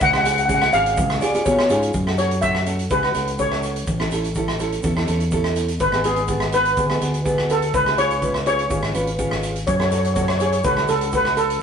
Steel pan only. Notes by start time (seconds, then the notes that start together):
0.02 F#5
0.10 F#5
0.18 F#5
0.24 F#5
0.32 F#5
0.39 F#5
0.45 F#5
0.54 F#5
0.62 F#5
0.73 F5
2.18 C#5
2.42 E5
2.91 B4
3.40 C#5
5.81 B4
6.05 G#4
6.54 B4
7.51 A4
7.75 B4
7.98 C#5
8.47 C#5
9.67 C#5
9.75 C#5
9.84 C#5
9.91 C#5
9.98 C#5
10.06 C#5
10.14 C#5
10.22 C#5
10.29 C#5
10.38 C#5
10.46 C#5
10.52 C#5
10.64 B4
10.89 A4
11.15 B4
11.37 A4